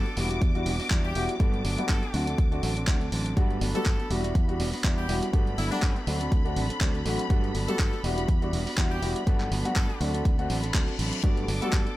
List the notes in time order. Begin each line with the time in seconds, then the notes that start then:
Already playing: A4 D6
0.06 B3 D4 A4, closed hi-hat
0.16 E1 G3 B3 D4 E4 F#4, open hi-hat
0.30 B3 D4 F#4, closed hi-hat
0.41 E2, kick, closed hi-hat
0.55 G3 B3 D4 E4 F#4, closed hi-hat
0.66 E1 G3 B3 D4 F#4, open hi-hat
0.79 B3 D4 F#4, muted fingered electric bass stroke, open hi-hat
0.90 E2 G3 D4 E4 F#4, kick, clap, closed hi-hat
1.04 G4, closed hi-hat
1.15 E1 G3 B3 D4 E4 F#4, open hi-hat
1.29 closed hi-hat
1.39 G2 F#3 G3 A3 B3 D4 F#4 A4, kick, closed hi-hat
1.54 closed hi-hat
1.64 G1 F#3 B3 D4 A4, open hi-hat
1.78 G3 A3 B3 F#4, muted fingered electric bass stroke, closed hi-hat
1.89 G2 F#3 B3 D4 A4, kick, clap, closed hi-hat
2.02 B3 D4 A4, closed hi-hat
2.13 D2 F#3 A3 C4 D4 F#4 A4, open hi-hat
2.27 C4 D4 A4, closed hi-hat
2.38 D2, kick, closed hi-hat
2.51 A3 C4 D4 F#4 A4, closed hi-hat
2.63 A1 F#3 C4 D4 A4, open hi-hat
2.76 C4 D4 A4, closed hi-hat
2.87 D2 F#3 A3 C4 D4 F#4 A4, kick, clap, closed hi-hat
3.01 C4 D4 A4, closed hi-hat
3.12 A1 F#3 C4 D4 A4, open hi-hat
3.26 closed hi-hat
3.36 G2 F#3 G3 A3 B3 D4 F#4 A4 B5, kick, closed hi-hat
3.50 closed hi-hat
3.61 G1 F#3 B3 D4 A4, open hi-hat
3.74 G3 A3 B3 F#4 A4, muted fingered electric bass stroke, closed hi-hat
3.86 G2 F#3 D4 A4, kick, clap, closed hi-hat
3.99 B3 D4 A4, closed hi-hat
4.10 E1 G3 B3 D4 E4 F#4, open hi-hat
4.23 B3 D4 F#4, closed hi-hat
4.35 E2, kick, closed hi-hat
4.48 G3 B3 D4 E4 F#4, closed hi-hat
4.59 E1 G3 B3 D4 F#4, open hi-hat
4.73 B3 D4 F#4, muted fingered electric bass stroke, open hi-hat
4.84 E2 G3 B3 D4 E4 F#4, kick, clap, closed hi-hat
4.98 G4, closed hi-hat
5.08 E1 G3 B3 D4 E4 F#4, open hi-hat
5.23 closed hi-hat
5.33 G2 F#3 G3 A3 B3 D4 F#4 A4, kick, closed hi-hat
5.47 closed hi-hat
5.58 G1 F#3 B3 D4 E4 A4, open hi-hat
5.71 G3 A3 B3 D4 F#4, closed hi-hat
5.82 G2 F#3 B3 D4 A4, kick, clap, closed hi-hat
5.96 B3 D4 A4, closed hi-hat
6.07 D2 F#3 A3 C4 D4 F#4 A4, open hi-hat
6.20 C4 D4 A4, closed hi-hat
6.32 D2, kick, closed hi-hat
6.45 A3 C4 D4 F#4 A4, closed hi-hat
6.56 A1 F#3 C4 D4 A4, open hi-hat
6.69 C4 D4 A4, muted fingered electric bass stroke, closed hi-hat
6.80 D2 F#3 A3 C4 D4 F#4 A4, kick, clap, closed hi-hat
6.94 C4 D4 A4, closed hi-hat
7.05 A1 F#3 A3 C4 D4 F#4 A4, open hi-hat
7.19 closed hi-hat
7.29 G2 F#3 G3 A3 B3 D4 F#4 A4, kick, closed hi-hat
7.44 closed hi-hat
7.54 G1 F#3 B3 D4 A4, open hi-hat
7.68 G3 A3 B3 F#4 A4, muted fingered electric bass stroke, closed hi-hat
7.79 G2 F#3 B3 D4 A4, kick, clap, closed hi-hat
7.92 B3 D4 A4, closed hi-hat
8.03 E1 G3 B3 D4 E4 F#4, open hi-hat
8.17 B3 D4 F#4, closed hi-hat
8.28 E2, kick, closed hi-hat
8.41 G3 B3 D4 E4 F#4, closed hi-hat
8.52 E1 G3 B3 D4 F#4, open hi-hat
8.66 B3 D4 F#4, muted fingered electric bass stroke, open hi-hat
8.77 E2 G3 B3 D4 E4 F#4, kick, clap, closed hi-hat
8.91 G4, closed hi-hat
9.02 E1 G3 B3 D4 E4 F#4, open hi-hat
9.16 closed hi-hat
9.26 G2 F#3 G3 A3 B3 D4 F#4 A4, kick, closed hi-hat
9.40 clap, closed hi-hat
9.51 G1 F#3 B3 D4 A4, open hi-hat
9.65 G3 A3 B3 F#4, muted fingered electric bass stroke, closed hi-hat
9.76 G2 B3 D4 A4, kick, clap, closed hi-hat
9.89 B3 D4 A4, closed hi-hat
10.00 D2 F#3 A3 C4 D4 F#4 A4, open hi-hat
10.14 C4 D4 A4, closed hi-hat
10.25 D2, kick, closed hi-hat, reverse cymbal
10.38 A3 C4 D4 F#4 A4, closed hi-hat
10.49 A1 F#3 C4 D4 A4, open hi-hat
10.63 C4 D4 A4, closed hi-hat
10.74 D2 F#3 A3 C4 D4 F#4 A4, kick, clap, closed hi-hat
10.87 C4 D4 A4, closed hi-hat
10.98 A1 F#3 C4 D4 A4, open hi-hat
11.13 closed hi-hat
11.23 G2 F#3 G3 A3 B3 D4 F#4 A4 D6, kick, closed hi-hat
11.37 closed hi-hat
11.47 G1 F#3 B3 D4 A4, open hi-hat
11.61 G3 A3 B3 F#4 A4, muted fingered electric bass stroke, closed hi-hat
11.72 G2 F#3 D4 A4, kick, clap, closed hi-hat
11.86 B3 D4 A4, closed hi-hat